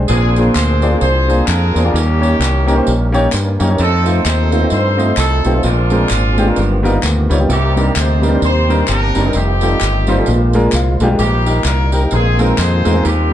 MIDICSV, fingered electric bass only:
0, 0, Header, 1, 2, 480
1, 0, Start_track
1, 0, Tempo, 462963
1, 86, Time_signature, 4, 2, 24, 8
1, 13822, End_track
2, 0, Start_track
2, 0, Title_t, "Fingered electric bass"
2, 0, Program_c, 0, 33
2, 98, Note_on_c, 0, 34, 104
2, 502, Note_off_c, 0, 34, 0
2, 574, Note_on_c, 0, 38, 97
2, 980, Note_off_c, 0, 38, 0
2, 1053, Note_on_c, 0, 36, 102
2, 1460, Note_off_c, 0, 36, 0
2, 1532, Note_on_c, 0, 41, 103
2, 1772, Note_off_c, 0, 41, 0
2, 1821, Note_on_c, 0, 40, 95
2, 1984, Note_off_c, 0, 40, 0
2, 2011, Note_on_c, 0, 39, 99
2, 2419, Note_off_c, 0, 39, 0
2, 2482, Note_on_c, 0, 36, 100
2, 2894, Note_off_c, 0, 36, 0
2, 2982, Note_on_c, 0, 34, 97
2, 3385, Note_off_c, 0, 34, 0
2, 3458, Note_on_c, 0, 43, 97
2, 3696, Note_off_c, 0, 43, 0
2, 3737, Note_on_c, 0, 42, 99
2, 3903, Note_off_c, 0, 42, 0
2, 3934, Note_on_c, 0, 41, 110
2, 4340, Note_off_c, 0, 41, 0
2, 4408, Note_on_c, 0, 39, 101
2, 4817, Note_off_c, 0, 39, 0
2, 4889, Note_on_c, 0, 43, 90
2, 5298, Note_off_c, 0, 43, 0
2, 5363, Note_on_c, 0, 36, 98
2, 5608, Note_off_c, 0, 36, 0
2, 5652, Note_on_c, 0, 35, 90
2, 5820, Note_off_c, 0, 35, 0
2, 5850, Note_on_c, 0, 34, 118
2, 6258, Note_off_c, 0, 34, 0
2, 6329, Note_on_c, 0, 32, 90
2, 6738, Note_off_c, 0, 32, 0
2, 6815, Note_on_c, 0, 31, 93
2, 7221, Note_off_c, 0, 31, 0
2, 7293, Note_on_c, 0, 38, 93
2, 7533, Note_off_c, 0, 38, 0
2, 7572, Note_on_c, 0, 37, 107
2, 7740, Note_off_c, 0, 37, 0
2, 7771, Note_on_c, 0, 36, 113
2, 8179, Note_off_c, 0, 36, 0
2, 8253, Note_on_c, 0, 38, 81
2, 8660, Note_off_c, 0, 38, 0
2, 8731, Note_on_c, 0, 39, 99
2, 9138, Note_off_c, 0, 39, 0
2, 9217, Note_on_c, 0, 31, 106
2, 9455, Note_off_c, 0, 31, 0
2, 9497, Note_on_c, 0, 30, 108
2, 9662, Note_off_c, 0, 30, 0
2, 9684, Note_on_c, 0, 29, 102
2, 10094, Note_off_c, 0, 29, 0
2, 10176, Note_on_c, 0, 31, 93
2, 10581, Note_off_c, 0, 31, 0
2, 10655, Note_on_c, 0, 34, 107
2, 11060, Note_off_c, 0, 34, 0
2, 11126, Note_on_c, 0, 36, 104
2, 11367, Note_off_c, 0, 36, 0
2, 11408, Note_on_c, 0, 35, 107
2, 11576, Note_off_c, 0, 35, 0
2, 11602, Note_on_c, 0, 34, 113
2, 12012, Note_off_c, 0, 34, 0
2, 12074, Note_on_c, 0, 36, 110
2, 12487, Note_off_c, 0, 36, 0
2, 12569, Note_on_c, 0, 34, 94
2, 12975, Note_off_c, 0, 34, 0
2, 13045, Note_on_c, 0, 41, 112
2, 13286, Note_off_c, 0, 41, 0
2, 13332, Note_on_c, 0, 40, 103
2, 13497, Note_off_c, 0, 40, 0
2, 13533, Note_on_c, 0, 39, 113
2, 13822, Note_off_c, 0, 39, 0
2, 13822, End_track
0, 0, End_of_file